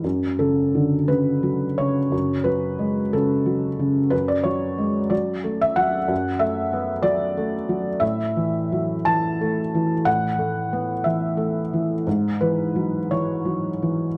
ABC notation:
X:1
M:6/8
L:1/16
Q:3/8=60
K:F#m
V:1 name="Felt piano"
z2 A4 B4 c2- | c2 B4 A6 | B d c4 d3 e f2- | f2 e4 d6 |
e6 a6 | f6 e6 | z2 B4 c6 |]
V:2 name="Felt piano" clef=bass
F,,2 C,2 D,2 C,2 F,2 C,2 | F,,2 F,2 G,2 C,2 F,2 C,2 | F,,2 F,2 G,2 F,2 A,2 F,2 | F,,2 A,2 B,2 F,2 A,2 F,2 |
A,,2 E,2 F,2 E,2 A,2 E,2 | A,,2 A,2 B,2 E,2 A,2 E,2 | G,,2 E,2 F,2 E,2 F,2 E,2 |]